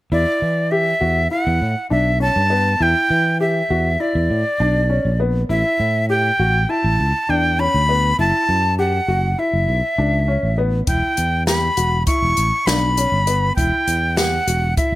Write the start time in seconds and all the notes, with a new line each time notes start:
0.12 E2 E4 D5
0.42 E3
0.71 G4 E5
1.01 E2 F#4
1.31 E4 F#5
1.47 E2
1.62 A2
1.90 B1 D4 E5
2.20 C#4 A5
2.36 G2
2.50 B3
2.80 E2 E4 G5
3.10 E3
3.40 G4 E5
3.70 E2 F#4
4.00 E4 D5
4.15 E2
4.30 A2
4.60 B1 D4
4.90 C#4
5.05 A#1
5.20 B3
5.49 A1 E4 E5
5.80 A2
6.10 G4 G5
6.39 A1 F#4
6.69 E4 A5
6.84 A1
6.99 C#2
7.29 E2 D4 G5
7.59 C#4 B5
7.74 D2
7.89 B3
8.19 F#1 E4 A5
8.49 F#2
8.79 G4 F#5
9.08 F#1 F#4
9.38 E4 E5
9.53 F#1
9.68 B1
9.98 C#2 D4
10.28 C#4
10.43 A1
10.58 B3
10.87 E1 E4 G5, kick, closed hi-hat
11.17 E2, closed hi-hat
11.47 G4 B5, snare, closed hi-hat
11.77 E1 F#4, closed hi-hat
12.07 E4 C#6, kick, closed hi-hat
12.22 E1
12.37 A1, closed hi-hat
12.66 B1 D4 B5, snare, closed hi-hat
12.97 C#4, closed hi-hat
13.12 G1
13.27 B3, closed hi-hat
13.56 E1 E4 G5, kick, closed hi-hat
13.88 E2, closed hi-hat
14.17 G4 F#5, snare, closed hi-hat
14.47 E1 F#4, closed hi-hat
14.77 E4 E5, kick, closed hi-hat